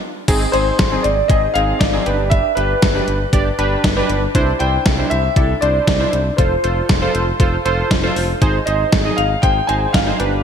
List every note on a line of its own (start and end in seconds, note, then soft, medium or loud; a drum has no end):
0.28 0.46 G#1 loud
0.28 0.44 C4 medium
0.28 0.44 D#4 medium
0.28 0.44 G#4 loud
0.28 kick loud
0.28 closed hi-hat medium
0.28 crash loud
0.52 0.71 G#1 loud
0.52 0.77 C4 medium
0.52 0.77 D#4 medium
0.52 0.77 G#4 medium
0.52 1.05 C5 loud
0.52 closed hi-hat medium
0.79 0.97 G#1 loud
0.79 kick loud
0.79 snare loud
0.79 closed hi-hat medium
0.92 1.15 C4 medium
0.92 1.15 D#4 medium
0.92 1.15 G#4 medium
1.03 1.22 G#1 loud
1.03 1.27 D5 loud
1.03 closed hi-hat medium
1.28 1.47 G#1 loud
1.28 1.45 C4 medium
1.28 1.45 D#4 medium
1.28 1.45 G#4 medium
1.28 1.55 D#5 loud
1.28 kick loud
1.28 closed hi-hat medium
1.54 1.73 G#1 loud
1.54 1.79 C4 medium
1.54 1.79 D#4 medium
1.54 1.79 G#4 medium
1.54 1.81 F5 loud
1.54 closed hi-hat medium
1.79 1.98 G#1 loud
1.79 2.32 D5 loud
1.79 kick loud
1.79 snare loud
1.79 closed hi-hat medium
1.93 2.06 C4 medium
1.93 2.06 D#4 medium
1.93 2.06 G#4 medium
2.06 2.42 G1 loud
2.06 2.47 D4 medium
2.06 2.47 G4 medium
2.06 2.47 B4 medium
2.06 closed hi-hat medium
2.30 2.57 E5 loud
2.30 kick loud
2.30 closed hi-hat medium
2.55 2.75 G1 loud
2.55 2.80 D4 medium
2.55 2.80 G4 medium
2.55 4.05 B4 loud
2.55 2.80 B4 medium
2.55 closed hi-hat medium
2.82 3.00 G1 loud
2.82 kick loud
2.82 snare loud
2.82 closed hi-hat medium
2.95 3.19 D4 medium
2.95 3.19 G4 medium
2.95 3.19 B4 medium
3.08 3.26 G1 loud
3.08 closed hi-hat medium
3.33 3.51 G1 loud
3.33 3.49 D4 medium
3.33 3.49 G4 medium
3.33 3.49 D5 loud
3.33 kick loud
3.33 closed hi-hat medium
3.59 3.76 G1 loud
3.59 3.82 D4 loud
3.59 3.82 G4 medium
3.59 3.82 B4 loud
3.59 closed hi-hat medium
3.84 4.02 G1 loud
3.84 kick loud
3.84 snare loud
3.84 closed hi-hat medium
3.97 4.20 D4 medium
3.97 4.20 G4 medium
3.97 4.20 B4 loud
4.09 4.27 G1 loud
4.09 closed hi-hat medium
4.35 4.53 C2 loud
4.35 4.51 D4 medium
4.35 4.51 E4 medium
4.35 4.51 C5 loud
4.35 kick loud
4.35 closed hi-hat medium
4.59 4.78 C2 loud
4.59 4.84 D4 medium
4.59 4.84 E4 medium
4.59 4.84 C5 medium
4.59 5.12 G5 loud
4.59 closed hi-hat medium
4.86 5.04 C2 loud
4.86 kick loud
4.86 snare loud
4.86 closed hi-hat medium
4.99 5.22 D4 medium
4.99 5.22 E4 medium
4.99 5.22 C5 medium
5.10 5.29 C2 loud
5.10 5.63 E5 loud
5.10 closed hi-hat medium
5.36 5.54 C2 loud
5.36 5.52 D4 medium
5.36 5.52 E4 medium
5.36 5.52 A4 medium
5.36 kick loud
5.36 closed hi-hat medium
5.61 5.80 C2 loud
5.61 5.85 D4 medium
5.61 5.85 E4 medium
5.61 5.85 C5 medium
5.61 6.40 D5 loud
5.61 closed hi-hat medium
5.87 6.05 C2 loud
5.87 kick loud
5.87 snare loud
5.87 closed hi-hat medium
6.00 6.24 D4 medium
6.00 6.24 E4 medium
6.00 6.24 C5 medium
6.13 6.31 C2 loud
6.13 closed hi-hat medium
6.37 6.56 F1 loud
6.37 6.54 F4 medium
6.37 6.54 A4 medium
6.37 6.85 C5 medium
6.37 6.54 C5 medium
6.37 kick loud
6.37 closed hi-hat medium
6.64 6.82 F1 loud
6.64 6.87 F4 medium
6.64 6.87 A4 medium
6.64 6.87 C5 medium
6.64 closed hi-hat medium
6.89 7.07 F1 loud
6.89 kick loud
6.89 snare loud
6.89 closed hi-hat medium
7.02 7.25 F4 medium
7.02 7.25 A4 medium
7.02 7.25 C5 loud
7.15 7.32 F1 loud
7.15 closed hi-hat medium
7.40 7.58 F1 loud
7.40 7.56 F4 medium
7.40 7.56 A4 medium
7.40 7.56 C5 loud
7.40 kick loud
7.40 closed hi-hat medium
7.65 7.83 F1 loud
7.65 7.89 F4 medium
7.65 7.89 A4 medium
7.65 7.89 C5 loud
7.65 closed hi-hat medium
7.91 8.09 F1 loud
7.91 kick loud
7.91 snare loud
7.91 closed hi-hat medium
8.04 8.27 F4 medium
8.04 8.27 A4 medium
8.04 8.27 C5 loud
8.16 8.34 F1 loud
8.16 open hi-hat medium
8.42 8.59 G#1 loud
8.42 8.57 D#4 medium
8.42 8.57 G#4 medium
8.42 8.57 C5 loud
8.42 kick loud
8.42 closed hi-hat medium
8.66 8.85 G#1 loud
8.66 8.91 D#4 medium
8.66 8.91 G#4 medium
8.66 8.91 C5 medium
8.66 9.19 D#5 medium
8.66 closed hi-hat medium
8.92 9.11 G#1 loud
8.92 kick loud
8.92 snare loud
8.92 closed hi-hat medium
9.05 9.29 D#4 medium
9.05 9.29 G#4 medium
9.05 9.29 D#5 medium
9.17 9.36 G#1 loud
9.17 9.41 F5 loud
9.17 closed hi-hat medium
9.42 9.61 G#1 loud
9.42 9.59 D#4 medium
9.42 9.59 G#4 medium
9.42 9.59 C5 medium
9.42 9.69 G5 loud
9.42 kick loud
9.42 closed hi-hat medium
9.67 9.87 G#1 loud
9.67 9.92 D#4 medium
9.67 9.92 G#4 medium
9.67 9.92 C5 medium
9.67 9.73 G#5 loud
9.67 closed hi-hat medium
9.93 10.12 G#1 loud
9.93 10.43 F5 medium
9.93 kick loud
9.93 snare loud
9.93 closed hi-hat medium
10.07 10.20 D#4 medium
10.07 10.20 G#4 medium
10.07 10.20 C5 medium
10.20 10.43 G1 loud
10.20 10.43 D4 medium
10.20 10.43 G4 medium
10.20 10.43 B4 medium
10.20 closed hi-hat medium